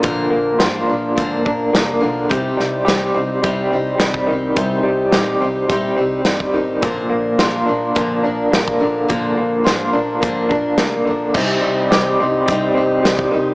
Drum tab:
CC |----------------|----------------|----------------|----------------|
HH |x---x---x---x---|x---x---x---x---|x---x---x---x---|x---x---x---x---|
SD |----o-------o---|--o-o-------o---|----o-------o---|----o-------o---|
BD |o-------o-o-----|o-------o----o--|o-------o----o--|o-------o----o--|

CC |----------------|x---------------|
HH |x---x---x---x---|----x---x---x---|
SD |----o-------o---|----o-------o---|
BD |o-------o-o-----|o-------o----o--|